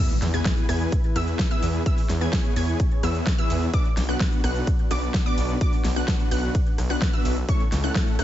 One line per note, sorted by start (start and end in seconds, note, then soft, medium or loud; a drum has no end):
0.00 3.70 E3 medium
0.00 0.13 B3 medium
0.00 0.13 E4 medium
0.00 3.70 E4 medium
0.00 0.13 G#4 medium
0.00 3.70 G#4 medium
0.00 0.13 B4 medium
0.00 1.84 B4 medium
0.00 0.13 E5 medium
0.00 0.13 E6 medium
0.00 impact medium
0.10 closed hi-hat soft
0.22 0.40 E2 loud
0.22 snare medium
0.22 open hi-hat loud
0.22 ride medium
0.22 shaker medium
0.34 0.66 B3 medium
0.34 0.66 E4 medium
0.34 0.66 G#4 medium
0.34 0.66 B4 medium
0.34 0.66 G#5 loud
0.34 0.66 G#6 loud
0.34 closed hi-hat soft
0.34 shaker soft
0.45 kick loud
0.45 snare loud
0.45 closed hi-hat loud
0.45 ride medium
0.45 shaker soft
0.57 closed hi-hat soft
0.57 shaker soft
0.69 0.86 E2 loud
0.69 0.92 B3 medium
0.69 0.92 E4 medium
0.69 0.92 G#4 medium
0.69 0.92 B4 medium
0.69 0.92 G#5 loud
0.69 0.92 G#6 loud
0.69 cross-stick medium
0.69 open hi-hat loud
0.69 ride medium
0.69 shaker medium
0.81 shaker soft
0.92 kick loud
0.92 closed hi-hat loud
0.92 ride medium
0.92 shaker soft
1.04 closed hi-hat soft
1.16 1.33 E2 loud
1.16 1.39 B3 medium
1.16 1.39 E4 medium
1.16 1.39 G#4 medium
1.16 1.39 B4 medium
1.16 1.39 E5 medium
1.16 1.39 E6 loud
1.16 cross-stick medium
1.16 open hi-hat loud
1.16 ride medium
1.16 shaker medium
1.28 closed hi-hat soft
1.28 shaker soft
1.39 kick loud
1.39 snare loud
1.39 closed hi-hat medium
1.39 ride medium
1.39 shaker soft
1.51 1.83 B3 medium
1.51 1.83 E4 medium
1.51 1.83 G#4 medium
1.51 1.83 B4 medium
1.51 1.83 E5 loud
1.51 1.83 E6 loud
1.51 closed hi-hat soft
1.51 shaker soft
1.63 1.80 E2 loud
1.63 open hi-hat loud
1.63 ride medium
1.63 shaker medium
1.74 closed hi-hat soft
1.74 shaker soft
1.86 2.00 E4 medium
1.86 3.72 C#5 medium
1.86 2.00 E5 medium
1.86 2.00 E6 medium
1.86 kick loud
1.86 closed hi-hat medium
1.86 ride medium
1.86 shaker soft
1.98 open hi-hat medium
1.98 shaker soft
2.09 2.27 E2 loud
2.09 snare medium
2.09 open hi-hat loud
2.09 ride medium
2.09 shaker medium
2.21 2.54 B3 medium
2.21 2.54 E4 medium
2.21 2.54 G#4 medium
2.21 2.54 B4 medium
2.21 2.54 G#5 loud
2.21 2.54 G#6 loud
2.21 closed hi-hat soft
2.21 shaker soft
2.33 kick loud
2.33 snare loud
2.33 closed hi-hat medium
2.33 ride medium
2.33 shaker soft
2.45 closed hi-hat soft
2.45 shaker soft
2.56 2.74 E2 loud
2.56 2.79 B3 medium
2.56 2.79 E4 medium
2.56 2.79 G#4 medium
2.56 2.79 B4 medium
2.56 2.79 G#5 loud
2.56 2.79 G#6 loud
2.56 open hi-hat loud
2.56 ride medium
2.56 shaker medium
2.68 closed hi-hat soft
2.68 shaker soft
2.80 kick loud
2.80 closed hi-hat medium
2.80 ride medium
2.80 shaker soft
2.92 closed hi-hat soft
3.03 3.21 E2 medium
3.03 3.26 B3 medium
3.03 3.26 E4 medium
3.03 3.26 G#4 medium
3.03 3.26 B4 medium
3.03 3.26 E5 medium
3.03 3.26 E6 medium
3.03 cross-stick medium
3.03 open hi-hat loud
3.03 ride medium
3.03 shaker medium
3.15 closed hi-hat soft
3.15 shaker soft
3.27 kick loud
3.27 snare loud
3.27 closed hi-hat medium
3.27 ride medium
3.27 shaker soft
3.38 3.71 B3 medium
3.38 3.71 E4 medium
3.38 3.71 G#4 medium
3.38 3.71 B4 medium
3.38 3.71 E5 loud
3.38 3.71 E6 loud
3.38 closed hi-hat soft
3.38 shaker soft
3.50 3.68 E2 loud
3.50 open hi-hat loud
3.50 ride medium
3.50 shaker medium
3.62 shaker soft
3.74 3.88 B3 medium
3.74 7.45 B3 medium
3.74 3.88 D4 medium
3.74 7.45 D4 medium
3.74 7.45 F#4 medium
3.74 3.88 F#4 medium
3.74 3.88 B4 medium
3.74 3.88 D5 medium
3.74 3.88 D6 medium
3.74 kick loud
3.74 closed hi-hat loud
3.74 ride medium
3.74 shaker soft
3.85 closed hi-hat soft
3.97 4.15 B1 loud
3.97 snare medium
3.97 open hi-hat loud
3.97 ride medium
3.97 shaker medium
4.09 4.41 B3 medium
4.09 4.41 D4 medium
4.09 4.41 F#4 medium
4.09 4.41 B4 medium
4.09 4.41 F#5 medium
4.09 4.41 F#6 loud
4.09 closed hi-hat soft
4.09 shaker soft
4.20 kick loud
4.20 snare loud
4.20 closed hi-hat medium
4.20 ride medium
4.20 shaker soft
4.32 closed hi-hat soft
4.32 shaker soft
4.44 4.61 B1 loud
4.44 4.67 B3 medium
4.44 4.67 D4 medium
4.44 4.67 F#4 medium
4.44 4.67 B4 medium
4.44 4.67 F#5 loud
4.44 4.67 F#6 loud
4.44 cross-stick medium
4.44 open hi-hat loud
4.44 ride medium
4.44 shaker medium
4.56 closed hi-hat soft
4.56 shaker soft
4.67 kick loud
4.67 closed hi-hat medium
4.67 ride medium
4.67 shaker soft
4.79 closed hi-hat soft
4.91 5.08 B1 loud
4.91 5.14 B3 medium
4.91 5.14 D4 medium
4.91 5.14 F#4 medium
4.91 5.14 B4 medium
4.91 5.14 D5 medium
4.91 5.14 D6 medium
4.91 cross-stick medium
4.91 open hi-hat loud
4.91 ride medium
4.91 shaker medium
5.03 closed hi-hat soft
5.03 shaker soft
5.14 kick loud
5.14 snare loud
5.14 closed hi-hat medium
5.14 ride medium
5.14 shaker soft
5.26 5.58 B3 medium
5.26 5.58 D4 medium
5.26 5.58 F#4 medium
5.26 5.58 B4 medium
5.26 5.58 D5 loud
5.26 5.58 D6 loud
5.26 closed hi-hat soft
5.26 shaker soft
5.38 5.55 B1 loud
5.38 open hi-hat loud
5.38 ride medium
5.38 shaker medium
5.49 closed hi-hat soft
5.49 shaker soft
5.61 5.75 B3 medium
5.61 5.75 B4 medium
5.61 5.75 D6 medium
5.61 kick loud
5.61 closed hi-hat medium
5.61 ride medium
5.61 shaker soft
5.73 open hi-hat medium
5.73 shaker soft
5.84 6.02 B1 loud
5.84 snare medium
5.84 open hi-hat loud
5.84 ride medium
5.84 shaker medium
5.96 6.29 B3 medium
5.96 6.29 D4 medium
5.96 6.29 F#4 medium
5.96 6.29 B4 medium
5.96 6.29 F#5 medium
5.96 6.29 F#6 loud
5.96 shaker soft
6.08 kick loud
6.08 snare loud
6.08 closed hi-hat medium
6.08 ride medium
6.08 shaker soft
6.20 closed hi-hat soft
6.20 shaker soft
6.31 6.49 B1 loud
6.31 6.54 B3 medium
6.31 6.54 D4 medium
6.31 6.54 F#4 medium
6.31 6.54 B4 medium
6.31 6.54 F#5 loud
6.31 6.54 F#6 loud
6.31 open hi-hat loud
6.31 ride medium
6.31 shaker medium
6.43 shaker soft
6.55 kick loud
6.55 closed hi-hat medium
6.55 ride medium
6.55 shaker soft
6.67 closed hi-hat soft
6.78 6.96 B1 medium
6.78 cross-stick medium
6.78 open hi-hat loud
6.78 ride medium
6.78 shaker medium
6.90 7.11 B3 loud
6.90 7.11 D4 loud
6.90 7.11 F#4 medium
6.90 7.11 B4 medium
6.90 7.11 F#5 loud
6.90 7.11 F#6 loud
6.90 closed hi-hat soft
6.90 shaker soft
7.02 kick loud
7.02 snare loud
7.02 closed hi-hat medium
7.02 ride medium
7.02 shaker soft
7.13 7.36 B3 medium
7.13 7.36 D4 medium
7.13 7.36 F#4 medium
7.13 7.36 B4 medium
7.13 7.36 E5 medium
7.13 7.36 E6 medium
7.13 closed hi-hat soft
7.13 shaker soft
7.25 7.43 B1 medium
7.25 open hi-hat loud
7.25 ride medium
7.25 shaker medium
7.37 closed hi-hat soft
7.37 shaker soft
7.49 8.24 C#3 medium
7.49 7.63 A3 medium
7.49 7.63 C#4 medium
7.49 8.24 C#4 medium
7.49 7.63 E4 medium
7.49 8.24 E4 medium
7.49 7.63 A4 medium
7.49 8.24 A4 medium
7.49 7.63 C#5 medium
7.49 7.63 C#6 medium
7.49 kick loud
7.49 closed hi-hat medium
7.49 ride medium
7.49 shaker soft
7.60 closed hi-hat soft
7.72 7.90 C#2 loud
7.72 snare medium
7.72 open hi-hat loud
7.72 ride medium
7.72 shaker medium
7.84 8.16 A3 medium
7.84 8.16 C#4 medium
7.84 8.16 E4 medium
7.84 8.16 A4 medium
7.84 8.16 F#5 loud
7.84 8.16 F#6 loud
7.84 closed hi-hat soft
7.84 shaker soft
7.95 kick loud
7.95 snare loud
7.95 closed hi-hat medium
7.95 ride medium
7.95 shaker soft
8.07 closed hi-hat soft
8.07 shaker soft
8.19 8.24 C#2 loud
8.19 8.24 A3 medium
8.19 8.24 C#4 medium
8.19 8.24 E4 medium
8.19 8.24 A4 medium
8.19 8.24 F#5 loud
8.19 8.24 F#6 loud
8.19 cross-stick medium
8.19 open hi-hat loud
8.19 ride medium
8.19 shaker medium